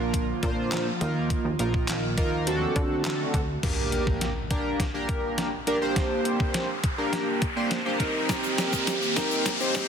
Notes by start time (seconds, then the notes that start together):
Already playing: A#1 D3 F3 A#3 D4 F4 A#4
0.14 kick, closed hi-hat
0.43 A#2 A#3 D4 F4 C5, kick, closed hi-hat
0.72 snare, clap, closed hi-hat
1.01 D#2 D#3 A#3 D#4 F4 A#4, closed hi-hat
1.30 kick, closed hi-hat
1.45 D#2
1.59 A#1 A#3 D#4 F4 A#4, closed hi-hat
1.74 kick
1.88 snare, clap, closed hi-hat
2.17 D#2 A#3 D#4 F4 A#4, kick, closed hi-hat
2.46 D3 A3 C4 D4 F#4 A4, closed hi-hat
2.76 D3, kick, closed hi-hat
3.05 snare, clap, closed hi-hat
3.34 D2, kick, closed hi-hat
3.63 A#3 D4 G4 A#4, kick, snare, closed hi-hat, crash, impact, riser
3.92 closed hi-hat
4.07 kick
4.21 snare, closed hi-hat
4.50 A#3 D4 G4 A#4, kick, closed hi-hat
4.80 kick, snare, closed hi-hat
4.94 A#3 D4 G4 A#4
5.09 kick, closed hi-hat
5.38 snare, closed hi-hat
5.67 A#3 D4 G4 A#4, closed hi-hat
5.81 A#3 D4 G4 C5
5.96 kick, snare, closed hi-hat
6.25 closed hi-hat
6.40 kick
6.54 snare, closed hi-hat
6.84 kick, closed hi-hat
6.98 A#3 D4 G4 A#4
7.13 snare, closed hi-hat
7.42 kick, closed hi-hat
7.56 A#3 D4 G4 C5
7.71 snare, closed hi-hat
7.85 A#3 D4 G4 C5
8.00 C4 D#4 G4 A#4, kick, closed hi-hat
8.29 D#3 A#3 C4 G4, kick, snare, closed hi-hat, shaker
8.44 shaker
8.58 snare, closed hi-hat, shaker
8.73 kick, shaker
8.87 snare, closed hi-hat, shaker
9.02 shaker
9.16 C4 D#4 G4 A#4, kick, snare, closed hi-hat, shaker
9.31 shaker
9.46 kick, snare, closed hi-hat, shaker
9.60 C4 D#4 G4 C5, shaker
9.75 kick, snare, closed hi-hat, shaker